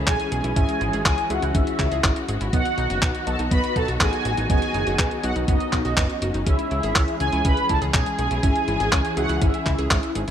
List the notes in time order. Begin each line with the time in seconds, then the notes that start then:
Already playing: E3 G#3 C#4 E4 G#4 E5
0.07 B1 G#4 C#5 G#5, kick, clap, closed hi-hat
0.20 closed hi-hat
0.32 B1 G#4, closed hi-hat
0.44 B1 E4, closed hi-hat
0.56 G#1 C#4 E4 F#4 G#4 E5 G#5, kick, closed hi-hat
0.69 closed hi-hat
0.81 G#1 E4, closed hi-hat
0.93 G#1 G#4, closed hi-hat
1.05 C#2 G#4 C#5 G#5, kick, clap, closed hi-hat
1.18 closed hi-hat
1.30 C#2 C#4 E4 F#4 G#4 E5 F#5, closed hi-hat
1.42 C#2 E4, closed hi-hat
1.55 G#1 C#4 E4 E5, kick, closed hi-hat
1.67 closed hi-hat
1.79 C#2 E4, kick, clap, closed hi-hat
1.92 C#2 G#4, closed hi-hat
2.04 G#1 C#5, kick, clap, closed hi-hat
2.16 closed hi-hat
2.28 G#1 G#4, closed hi-hat
2.41 G#1 E4, closed hi-hat
2.53 B1 D#3 F#3 B3 D#4 F#4 D#5 F#5, kick, closed hi-hat
2.65 closed hi-hat
2.78 B1 D#4, closed hi-hat
2.90 F#1 F#4, closed hi-hat
3.02 B1 B4, kick, clap, closed hi-hat
3.15 closed hi-hat
3.27 B1 B3 D#4 F#4 A4 D#5 A5, closed hi-hat
3.39 B1 D#4, closed hi-hat
3.51 B1 B3 B4 B5, kick, closed hi-hat
3.64 closed hi-hat
3.76 B1 D#4 A4 A5, kick, closed hi-hat
3.88 B1 F#4, closed hi-hat
4.01 A1 G#4 B4 G#5, kick, clap, closed hi-hat
4.13 closed hi-hat
4.25 A1 F#4, closed hi-hat
4.37 A1 D#4, closed hi-hat
4.50 F#1 B3 C#4 D#4 F#4 G#4 D#5 G#5, kick, closed hi-hat
4.62 closed hi-hat
4.74 F#1 D#4, closed hi-hat
4.87 F#1 F#4, closed hi-hat
4.99 B1 B4, kick, clap, closed hi-hat
5.11 closed hi-hat
5.24 B1 B3 D#4 F#4 D#5 F#5, closed hi-hat
5.36 B1 D#4, closed hi-hat
5.48 F#1 B3 D#4 D#5, kick, closed hi-hat
5.60 closed hi-hat
5.73 B1 D#4, kick, clap, closed hi-hat
5.85 B1 F#4, closed hi-hat
5.97 F#1 B4, kick, clap, closed hi-hat
6.10 closed hi-hat
6.22 F#1 B3 D#4 F#4 D#5, closed hi-hat
6.34 F#1 D#4, closed hi-hat
6.46 C#2 E3 G#3 C#4 E4 G#4 E5, kick, closed hi-hat
6.59 closed hi-hat
6.71 C#2 E4, closed hi-hat
6.83 G#1 G#4, closed hi-hat
6.96 C#2 C#5, kick, clap, closed hi-hat
7.08 closed hi-hat
7.20 C#2 C#4 E4 G#4 E5 G#5, closed hi-hat
7.33 C#2 E4, closed hi-hat
7.45 C#2 C#4 B4 B5, kick, closed hi-hat
7.57 closed hi-hat
7.69 C#2 E4 A4 A5, kick, closed hi-hat
7.82 C#2 G#4, closed hi-hat
7.94 B1 G#4 C#5 G#5, kick, clap, closed hi-hat
8.06 closed hi-hat
8.19 B1 G#4 G#5, closed hi-hat
8.31 B1 E4, closed hi-hat
8.43 G#1 C#4 E4 G#4 E5 G#5, kick, closed hi-hat
8.56 closed hi-hat
8.68 G#1 E4, closed hi-hat
8.80 G#1 G#4, closed hi-hat
8.92 C#2 C#5, kick, clap, closed hi-hat
9.05 closed hi-hat
9.17 C#2 C#4 E4 F#4 G#4 E5 F#5, closed hi-hat
9.29 C#2 E4, closed hi-hat
9.42 G#1 C#4 E4 E5, kick, closed hi-hat
9.54 closed hi-hat
9.66 C#2 E4, kick, clap, closed hi-hat
9.79 C#2 G#4, closed hi-hat
9.91 G#1 C#5, kick, clap, closed hi-hat
10.03 closed hi-hat
10.15 G#1 G#4, closed hi-hat
10.28 G#1, closed hi-hat